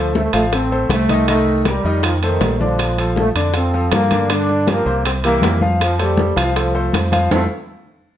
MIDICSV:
0, 0, Header, 1, 5, 480
1, 0, Start_track
1, 0, Key_signature, -1, "major"
1, 0, Tempo, 377121
1, 1632, Time_signature, 4, 2, 24, 8
1, 10403, End_track
2, 0, Start_track
2, 0, Title_t, "Grand piano"
2, 0, Program_c, 0, 0
2, 0, Note_on_c, 0, 57, 69
2, 0, Note_on_c, 0, 69, 72
2, 0, Note_on_c, 0, 72, 72
2, 343, Note_off_c, 0, 57, 0
2, 345, Note_off_c, 0, 69, 0
2, 347, Note_off_c, 0, 72, 0
2, 422, Note_on_c, 0, 53, 86
2, 429, Note_on_c, 0, 65, 83
2, 434, Note_on_c, 0, 77, 82
2, 622, Note_off_c, 0, 53, 0
2, 627, Note_off_c, 0, 65, 0
2, 629, Note_off_c, 0, 77, 0
2, 660, Note_on_c, 0, 57, 62
2, 666, Note_on_c, 0, 72, 65
2, 670, Note_on_c, 0, 69, 62
2, 862, Note_off_c, 0, 57, 0
2, 865, Note_off_c, 0, 72, 0
2, 867, Note_off_c, 0, 69, 0
2, 910, Note_on_c, 0, 57, 74
2, 920, Note_on_c, 0, 69, 74
2, 920, Note_on_c, 0, 72, 81
2, 1304, Note_off_c, 0, 57, 0
2, 1310, Note_off_c, 0, 69, 0
2, 1310, Note_off_c, 0, 72, 0
2, 1396, Note_on_c, 0, 51, 74
2, 1400, Note_on_c, 0, 63, 84
2, 1404, Note_on_c, 0, 75, 86
2, 1591, Note_off_c, 0, 51, 0
2, 1593, Note_off_c, 0, 63, 0
2, 1596, Note_off_c, 0, 75, 0
2, 1637, Note_on_c, 0, 51, 81
2, 1641, Note_on_c, 0, 63, 86
2, 1646, Note_on_c, 0, 75, 71
2, 2029, Note_off_c, 0, 51, 0
2, 2031, Note_off_c, 0, 63, 0
2, 2035, Note_off_c, 0, 75, 0
2, 2122, Note_on_c, 0, 55, 63
2, 2125, Note_on_c, 0, 67, 66
2, 2135, Note_on_c, 0, 70, 67
2, 2315, Note_off_c, 0, 55, 0
2, 2317, Note_off_c, 0, 67, 0
2, 2323, Note_off_c, 0, 70, 0
2, 2355, Note_on_c, 0, 51, 76
2, 2363, Note_on_c, 0, 63, 81
2, 2364, Note_on_c, 0, 75, 81
2, 2748, Note_off_c, 0, 51, 0
2, 2753, Note_off_c, 0, 63, 0
2, 2754, Note_off_c, 0, 75, 0
2, 2837, Note_on_c, 0, 57, 77
2, 2844, Note_on_c, 0, 69, 76
2, 2850, Note_on_c, 0, 72, 75
2, 3230, Note_off_c, 0, 57, 0
2, 3234, Note_off_c, 0, 69, 0
2, 3237, Note_off_c, 0, 72, 0
2, 3312, Note_on_c, 0, 50, 78
2, 3320, Note_on_c, 0, 74, 78
2, 3321, Note_on_c, 0, 62, 69
2, 3707, Note_off_c, 0, 50, 0
2, 3711, Note_off_c, 0, 74, 0
2, 3712, Note_off_c, 0, 62, 0
2, 3801, Note_on_c, 0, 53, 69
2, 3806, Note_on_c, 0, 65, 67
2, 3810, Note_on_c, 0, 69, 73
2, 4193, Note_off_c, 0, 53, 0
2, 4195, Note_off_c, 0, 65, 0
2, 4198, Note_off_c, 0, 69, 0
2, 4272, Note_on_c, 0, 50, 82
2, 4279, Note_on_c, 0, 62, 81
2, 4279, Note_on_c, 0, 74, 77
2, 4470, Note_off_c, 0, 50, 0
2, 4474, Note_off_c, 0, 62, 0
2, 4474, Note_off_c, 0, 74, 0
2, 4508, Note_on_c, 0, 53, 62
2, 4510, Note_on_c, 0, 65, 62
2, 4519, Note_on_c, 0, 69, 64
2, 4708, Note_off_c, 0, 53, 0
2, 4709, Note_off_c, 0, 65, 0
2, 4715, Note_off_c, 0, 69, 0
2, 4756, Note_on_c, 0, 53, 70
2, 4761, Note_on_c, 0, 65, 75
2, 4762, Note_on_c, 0, 69, 69
2, 5150, Note_off_c, 0, 53, 0
2, 5153, Note_off_c, 0, 65, 0
2, 5153, Note_off_c, 0, 69, 0
2, 5232, Note_on_c, 0, 50, 80
2, 5238, Note_on_c, 0, 62, 81
2, 5241, Note_on_c, 0, 74, 78
2, 5431, Note_off_c, 0, 50, 0
2, 5434, Note_off_c, 0, 62, 0
2, 5436, Note_off_c, 0, 74, 0
2, 5466, Note_on_c, 0, 50, 84
2, 5472, Note_on_c, 0, 74, 82
2, 5474, Note_on_c, 0, 62, 73
2, 5864, Note_off_c, 0, 50, 0
2, 5868, Note_off_c, 0, 74, 0
2, 5869, Note_off_c, 0, 62, 0
2, 5939, Note_on_c, 0, 53, 62
2, 5942, Note_on_c, 0, 65, 64
2, 5948, Note_on_c, 0, 67, 67
2, 6143, Note_off_c, 0, 53, 0
2, 6145, Note_off_c, 0, 65, 0
2, 6148, Note_off_c, 0, 67, 0
2, 6180, Note_on_c, 0, 48, 82
2, 6186, Note_on_c, 0, 60, 71
2, 6191, Note_on_c, 0, 72, 86
2, 6580, Note_off_c, 0, 48, 0
2, 6584, Note_off_c, 0, 60, 0
2, 6587, Note_off_c, 0, 72, 0
2, 6673, Note_on_c, 0, 52, 79
2, 6674, Note_on_c, 0, 67, 82
2, 6675, Note_on_c, 0, 64, 82
2, 7068, Note_off_c, 0, 52, 0
2, 7069, Note_off_c, 0, 64, 0
2, 7069, Note_off_c, 0, 67, 0
2, 7145, Note_on_c, 0, 65, 76
2, 7148, Note_on_c, 0, 53, 70
2, 7154, Note_on_c, 0, 77, 79
2, 7543, Note_off_c, 0, 65, 0
2, 7544, Note_off_c, 0, 53, 0
2, 7548, Note_off_c, 0, 77, 0
2, 7625, Note_on_c, 0, 57, 76
2, 7628, Note_on_c, 0, 69, 79
2, 7631, Note_on_c, 0, 72, 72
2, 8022, Note_off_c, 0, 57, 0
2, 8024, Note_off_c, 0, 69, 0
2, 8026, Note_off_c, 0, 72, 0
2, 8098, Note_on_c, 0, 53, 85
2, 8104, Note_on_c, 0, 65, 80
2, 8104, Note_on_c, 0, 77, 82
2, 8301, Note_off_c, 0, 53, 0
2, 8305, Note_off_c, 0, 65, 0
2, 8305, Note_off_c, 0, 77, 0
2, 8353, Note_on_c, 0, 69, 61
2, 8354, Note_on_c, 0, 57, 56
2, 8364, Note_on_c, 0, 72, 64
2, 8550, Note_off_c, 0, 69, 0
2, 8551, Note_off_c, 0, 57, 0
2, 8556, Note_off_c, 0, 72, 0
2, 8586, Note_on_c, 0, 57, 79
2, 8592, Note_on_c, 0, 69, 78
2, 8595, Note_on_c, 0, 72, 81
2, 8982, Note_off_c, 0, 57, 0
2, 8986, Note_off_c, 0, 69, 0
2, 8988, Note_off_c, 0, 72, 0
2, 9061, Note_on_c, 0, 53, 85
2, 9069, Note_on_c, 0, 65, 75
2, 9074, Note_on_c, 0, 77, 75
2, 9262, Note_off_c, 0, 53, 0
2, 9267, Note_off_c, 0, 65, 0
2, 9270, Note_off_c, 0, 77, 0
2, 9309, Note_on_c, 0, 69, 98
2, 9310, Note_on_c, 0, 64, 88
2, 9310, Note_on_c, 0, 65, 102
2, 9464, Note_off_c, 0, 64, 0
2, 9464, Note_off_c, 0, 65, 0
2, 9464, Note_off_c, 0, 69, 0
2, 10403, End_track
3, 0, Start_track
3, 0, Title_t, "Trombone section"
3, 0, Program_c, 1, 61
3, 0, Note_on_c, 1, 53, 89
3, 137, Note_off_c, 1, 53, 0
3, 194, Note_on_c, 1, 57, 95
3, 416, Note_off_c, 1, 57, 0
3, 439, Note_on_c, 1, 57, 86
3, 545, Note_off_c, 1, 57, 0
3, 684, Note_on_c, 1, 60, 95
3, 1124, Note_off_c, 1, 60, 0
3, 1159, Note_on_c, 1, 57, 108
3, 1602, Note_off_c, 1, 57, 0
3, 1640, Note_on_c, 1, 57, 104
3, 2083, Note_off_c, 1, 57, 0
3, 2138, Note_on_c, 1, 55, 99
3, 2573, Note_off_c, 1, 55, 0
3, 2617, Note_on_c, 1, 53, 79
3, 2720, Note_off_c, 1, 53, 0
3, 2861, Note_on_c, 1, 51, 98
3, 3295, Note_off_c, 1, 51, 0
3, 3326, Note_on_c, 1, 53, 93
3, 4041, Note_off_c, 1, 53, 0
3, 4066, Note_on_c, 1, 57, 100
3, 4167, Note_off_c, 1, 57, 0
3, 4530, Note_on_c, 1, 60, 85
3, 4970, Note_off_c, 1, 60, 0
3, 5009, Note_on_c, 1, 58, 106
3, 5450, Note_off_c, 1, 58, 0
3, 5485, Note_on_c, 1, 62, 108
3, 5961, Note_off_c, 1, 62, 0
3, 5969, Note_on_c, 1, 58, 101
3, 6432, Note_on_c, 1, 60, 86
3, 6443, Note_off_c, 1, 58, 0
3, 6541, Note_off_c, 1, 60, 0
3, 6680, Note_on_c, 1, 58, 110
3, 7124, Note_off_c, 1, 58, 0
3, 7412, Note_on_c, 1, 53, 97
3, 7627, Note_off_c, 1, 53, 0
3, 7653, Note_on_c, 1, 55, 106
3, 8124, Note_off_c, 1, 55, 0
3, 8136, Note_on_c, 1, 53, 92
3, 9272, Note_off_c, 1, 53, 0
3, 9325, Note_on_c, 1, 57, 93
3, 9329, Note_on_c, 1, 53, 88
3, 9330, Note_on_c, 1, 60, 83
3, 9436, Note_off_c, 1, 57, 0
3, 9439, Note_off_c, 1, 53, 0
3, 9439, Note_off_c, 1, 60, 0
3, 10403, End_track
4, 0, Start_track
4, 0, Title_t, "Fingered electric bass"
4, 0, Program_c, 2, 33
4, 0, Note_on_c, 2, 38, 89
4, 351, Note_off_c, 2, 38, 0
4, 426, Note_on_c, 2, 33, 91
4, 1098, Note_off_c, 2, 33, 0
4, 1134, Note_on_c, 2, 36, 88
4, 2269, Note_off_c, 2, 36, 0
4, 2345, Note_on_c, 2, 41, 94
4, 3019, Note_off_c, 2, 41, 0
4, 3066, Note_on_c, 2, 34, 94
4, 4196, Note_off_c, 2, 34, 0
4, 4266, Note_on_c, 2, 41, 82
4, 4941, Note_off_c, 2, 41, 0
4, 4984, Note_on_c, 2, 43, 92
4, 6115, Note_off_c, 2, 43, 0
4, 6184, Note_on_c, 2, 36, 90
4, 6859, Note_off_c, 2, 36, 0
4, 6903, Note_on_c, 2, 41, 90
4, 8033, Note_off_c, 2, 41, 0
4, 8100, Note_on_c, 2, 36, 97
4, 8775, Note_off_c, 2, 36, 0
4, 8824, Note_on_c, 2, 41, 95
4, 9274, Note_off_c, 2, 41, 0
4, 9313, Note_on_c, 2, 41, 100
4, 9491, Note_off_c, 2, 41, 0
4, 10403, End_track
5, 0, Start_track
5, 0, Title_t, "Drums"
5, 194, Note_on_c, 9, 63, 91
5, 198, Note_on_c, 9, 60, 61
5, 321, Note_off_c, 9, 63, 0
5, 326, Note_off_c, 9, 60, 0
5, 422, Note_on_c, 9, 65, 88
5, 432, Note_on_c, 9, 63, 35
5, 549, Note_off_c, 9, 65, 0
5, 560, Note_off_c, 9, 63, 0
5, 671, Note_on_c, 9, 65, 66
5, 672, Note_on_c, 9, 60, 72
5, 679, Note_on_c, 9, 63, 34
5, 798, Note_off_c, 9, 65, 0
5, 799, Note_off_c, 9, 60, 0
5, 806, Note_off_c, 9, 63, 0
5, 918, Note_on_c, 9, 63, 31
5, 1046, Note_off_c, 9, 63, 0
5, 1141, Note_on_c, 9, 63, 86
5, 1148, Note_on_c, 9, 60, 78
5, 1148, Note_on_c, 9, 61, 83
5, 1156, Note_on_c, 9, 65, 78
5, 1268, Note_off_c, 9, 63, 0
5, 1275, Note_off_c, 9, 60, 0
5, 1275, Note_off_c, 9, 61, 0
5, 1284, Note_off_c, 9, 65, 0
5, 1386, Note_on_c, 9, 63, 86
5, 1392, Note_on_c, 9, 65, 65
5, 1513, Note_off_c, 9, 63, 0
5, 1519, Note_off_c, 9, 65, 0
5, 1630, Note_on_c, 9, 65, 86
5, 1631, Note_on_c, 9, 63, 29
5, 1634, Note_on_c, 9, 60, 62
5, 1757, Note_off_c, 9, 65, 0
5, 1758, Note_off_c, 9, 63, 0
5, 1762, Note_off_c, 9, 60, 0
5, 1867, Note_on_c, 9, 63, 31
5, 1875, Note_on_c, 9, 60, 35
5, 1995, Note_off_c, 9, 63, 0
5, 2002, Note_off_c, 9, 60, 0
5, 2104, Note_on_c, 9, 63, 87
5, 2104, Note_on_c, 9, 65, 64
5, 2110, Note_on_c, 9, 60, 63
5, 2231, Note_off_c, 9, 63, 0
5, 2232, Note_off_c, 9, 65, 0
5, 2238, Note_off_c, 9, 60, 0
5, 2341, Note_on_c, 9, 63, 36
5, 2351, Note_on_c, 9, 60, 37
5, 2468, Note_off_c, 9, 63, 0
5, 2478, Note_off_c, 9, 60, 0
5, 2586, Note_on_c, 9, 60, 68
5, 2588, Note_on_c, 9, 63, 34
5, 2593, Note_on_c, 9, 65, 92
5, 2713, Note_off_c, 9, 60, 0
5, 2715, Note_off_c, 9, 63, 0
5, 2720, Note_off_c, 9, 65, 0
5, 2821, Note_on_c, 9, 63, 32
5, 2834, Note_on_c, 9, 65, 62
5, 2948, Note_off_c, 9, 63, 0
5, 2962, Note_off_c, 9, 65, 0
5, 3066, Note_on_c, 9, 60, 69
5, 3066, Note_on_c, 9, 61, 84
5, 3072, Note_on_c, 9, 63, 88
5, 3074, Note_on_c, 9, 65, 65
5, 3074, Note_on_c, 9, 66, 58
5, 3193, Note_off_c, 9, 60, 0
5, 3193, Note_off_c, 9, 61, 0
5, 3199, Note_off_c, 9, 63, 0
5, 3201, Note_off_c, 9, 65, 0
5, 3201, Note_off_c, 9, 66, 0
5, 3306, Note_on_c, 9, 60, 32
5, 3320, Note_on_c, 9, 63, 78
5, 3433, Note_off_c, 9, 60, 0
5, 3447, Note_off_c, 9, 63, 0
5, 3553, Note_on_c, 9, 60, 70
5, 3558, Note_on_c, 9, 65, 87
5, 3564, Note_on_c, 9, 63, 31
5, 3680, Note_off_c, 9, 60, 0
5, 3686, Note_off_c, 9, 65, 0
5, 3691, Note_off_c, 9, 63, 0
5, 3794, Note_on_c, 9, 63, 34
5, 3799, Note_on_c, 9, 65, 65
5, 3922, Note_off_c, 9, 63, 0
5, 3926, Note_off_c, 9, 65, 0
5, 4025, Note_on_c, 9, 60, 52
5, 4039, Note_on_c, 9, 63, 87
5, 4152, Note_off_c, 9, 60, 0
5, 4167, Note_off_c, 9, 63, 0
5, 4272, Note_on_c, 9, 65, 85
5, 4284, Note_on_c, 9, 63, 36
5, 4399, Note_off_c, 9, 65, 0
5, 4411, Note_off_c, 9, 63, 0
5, 4502, Note_on_c, 9, 60, 69
5, 4507, Note_on_c, 9, 65, 68
5, 4521, Note_on_c, 9, 63, 34
5, 4629, Note_off_c, 9, 60, 0
5, 4634, Note_off_c, 9, 65, 0
5, 4649, Note_off_c, 9, 63, 0
5, 4762, Note_on_c, 9, 63, 34
5, 4890, Note_off_c, 9, 63, 0
5, 4984, Note_on_c, 9, 65, 84
5, 4984, Note_on_c, 9, 66, 64
5, 4995, Note_on_c, 9, 63, 88
5, 4996, Note_on_c, 9, 60, 75
5, 4996, Note_on_c, 9, 61, 91
5, 5111, Note_off_c, 9, 65, 0
5, 5111, Note_off_c, 9, 66, 0
5, 5123, Note_off_c, 9, 63, 0
5, 5124, Note_off_c, 9, 60, 0
5, 5124, Note_off_c, 9, 61, 0
5, 5229, Note_on_c, 9, 65, 69
5, 5234, Note_on_c, 9, 63, 81
5, 5356, Note_off_c, 9, 65, 0
5, 5361, Note_off_c, 9, 63, 0
5, 5470, Note_on_c, 9, 63, 33
5, 5470, Note_on_c, 9, 65, 90
5, 5474, Note_on_c, 9, 60, 75
5, 5597, Note_off_c, 9, 63, 0
5, 5598, Note_off_c, 9, 65, 0
5, 5601, Note_off_c, 9, 60, 0
5, 5716, Note_on_c, 9, 60, 33
5, 5723, Note_on_c, 9, 63, 30
5, 5843, Note_off_c, 9, 60, 0
5, 5850, Note_off_c, 9, 63, 0
5, 5951, Note_on_c, 9, 63, 88
5, 5955, Note_on_c, 9, 65, 64
5, 5960, Note_on_c, 9, 60, 62
5, 6078, Note_off_c, 9, 63, 0
5, 6082, Note_off_c, 9, 65, 0
5, 6087, Note_off_c, 9, 60, 0
5, 6190, Note_on_c, 9, 63, 33
5, 6203, Note_on_c, 9, 60, 34
5, 6318, Note_off_c, 9, 63, 0
5, 6331, Note_off_c, 9, 60, 0
5, 6428, Note_on_c, 9, 63, 33
5, 6434, Note_on_c, 9, 65, 89
5, 6448, Note_on_c, 9, 60, 60
5, 6555, Note_off_c, 9, 63, 0
5, 6561, Note_off_c, 9, 65, 0
5, 6575, Note_off_c, 9, 60, 0
5, 6663, Note_on_c, 9, 63, 34
5, 6668, Note_on_c, 9, 65, 73
5, 6791, Note_off_c, 9, 63, 0
5, 6796, Note_off_c, 9, 65, 0
5, 6896, Note_on_c, 9, 63, 95
5, 6913, Note_on_c, 9, 65, 64
5, 6913, Note_on_c, 9, 66, 61
5, 6926, Note_on_c, 9, 60, 75
5, 6926, Note_on_c, 9, 61, 90
5, 7023, Note_off_c, 9, 63, 0
5, 7040, Note_off_c, 9, 65, 0
5, 7040, Note_off_c, 9, 66, 0
5, 7053, Note_off_c, 9, 60, 0
5, 7053, Note_off_c, 9, 61, 0
5, 7143, Note_on_c, 9, 63, 82
5, 7160, Note_on_c, 9, 60, 36
5, 7271, Note_off_c, 9, 63, 0
5, 7287, Note_off_c, 9, 60, 0
5, 7387, Note_on_c, 9, 63, 33
5, 7398, Note_on_c, 9, 65, 92
5, 7403, Note_on_c, 9, 60, 69
5, 7515, Note_off_c, 9, 63, 0
5, 7525, Note_off_c, 9, 65, 0
5, 7530, Note_off_c, 9, 60, 0
5, 7624, Note_on_c, 9, 63, 33
5, 7631, Note_on_c, 9, 65, 66
5, 7751, Note_off_c, 9, 63, 0
5, 7758, Note_off_c, 9, 65, 0
5, 7859, Note_on_c, 9, 63, 93
5, 7882, Note_on_c, 9, 60, 57
5, 7986, Note_off_c, 9, 63, 0
5, 8009, Note_off_c, 9, 60, 0
5, 8099, Note_on_c, 9, 63, 37
5, 8114, Note_on_c, 9, 65, 95
5, 8226, Note_off_c, 9, 63, 0
5, 8242, Note_off_c, 9, 65, 0
5, 8347, Note_on_c, 9, 63, 35
5, 8353, Note_on_c, 9, 65, 69
5, 8356, Note_on_c, 9, 60, 69
5, 8474, Note_off_c, 9, 63, 0
5, 8480, Note_off_c, 9, 65, 0
5, 8484, Note_off_c, 9, 60, 0
5, 8579, Note_on_c, 9, 63, 30
5, 8706, Note_off_c, 9, 63, 0
5, 8825, Note_on_c, 9, 63, 83
5, 8835, Note_on_c, 9, 65, 84
5, 8842, Note_on_c, 9, 60, 80
5, 8842, Note_on_c, 9, 61, 84
5, 8952, Note_off_c, 9, 63, 0
5, 8963, Note_off_c, 9, 65, 0
5, 8969, Note_off_c, 9, 60, 0
5, 8969, Note_off_c, 9, 61, 0
5, 9065, Note_on_c, 9, 63, 78
5, 9074, Note_on_c, 9, 65, 69
5, 9192, Note_off_c, 9, 63, 0
5, 9201, Note_off_c, 9, 65, 0
5, 9307, Note_on_c, 9, 63, 99
5, 9309, Note_on_c, 9, 65, 98
5, 9318, Note_on_c, 9, 61, 101
5, 9434, Note_off_c, 9, 63, 0
5, 9437, Note_off_c, 9, 65, 0
5, 9445, Note_off_c, 9, 61, 0
5, 10403, End_track
0, 0, End_of_file